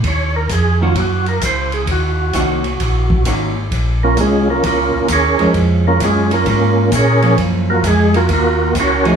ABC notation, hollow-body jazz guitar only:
X:1
M:4/4
L:1/8
Q:"Swing" 1/4=131
K:Bbm
V:1 name="Hollow-body jazz guitar"
z3 [E,B,DG] z4 | z2 [E,B,DG] z3 [E,B,DG] z | z6 z [F,A,D]- | [F,A,D]2 z4 z [F,B,D]- |
[F,B,D]2 z4 z [F,=A,E_A] |]